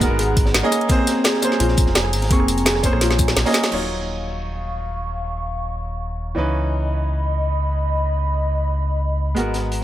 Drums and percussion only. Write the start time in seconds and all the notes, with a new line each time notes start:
0.01 kick, closed hi-hat, tambourine
0.19 closed hi-hat
0.37 kick, closed hi-hat, tambourine
0.46 snare
0.54 snare, closed hi-hat
0.72 cross-stick, closed hi-hat, tambourine
0.81 closed hi-hat
0.89 kick, closed hi-hat
0.99 cross-stick
1.07 snare, closed hi-hat, tambourine
1.24 snare, closed hi-hat
1.34 snare
1.42 closed hi-hat, tambourine
1.52 snare
1.60 closed hi-hat
1.68 snare
1.77 kick, closed hi-hat, tambourine
1.86 snare
1.95 snare, closed hi-hat
2.05 cross-stick
2.13 closed hi-hat, open hi-hat, tambourine
2.22 snare, closed hi-hat
2.31 kick, closed hi-hat
2.40 cross-stick
2.48 closed hi-hat, tambourine
2.58 closed hi-hat, tambourine
2.66 snare, closed hi-hat
2.75 cross-stick, snare
2.83 kick, closed hi-hat, tambourine
2.93 cross-stick
3.01 snare, closed hi-hat
3.11 snare
3.18 kick, closed hi-hat, tambourine
3.28 snare, closed hi-hat
3.37 snare, closed hi-hat
3.46 snare, closed hi-hat, tambourine
3.50 snare, closed hi-hat
3.54 snare, closed hi-hat, tambourine
3.63 snare, closed hi-hat
3.72 crash
9.36 closed hi-hat
9.54 snare, closed hi-hat
9.72 closed hi-hat